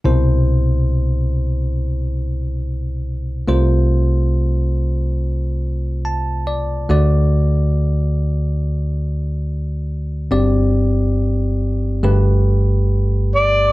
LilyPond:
<<
  \new Staff \with { instrumentName = "Harmonica" } { \time 4/4 \key c \major \tempo 4 = 70 r1 | r1 | r1 | r2. r8 d''8 | }
  \new Staff \with { instrumentName = "Tine electric piano" } { \time 4/4 \key c \major r1 | r2. a''8 d''8 | r1 | r1 | }
  \new Staff \with { instrumentName = "Tine electric piano" } { \time 4/4 \key c \major <c, b, c e' c''>1 | <c, c a f' c''>1 | <d, d a fis' d''>1 | <g,, g, c' g' d''>2 <g,, g, a g' b'>2 | }
>>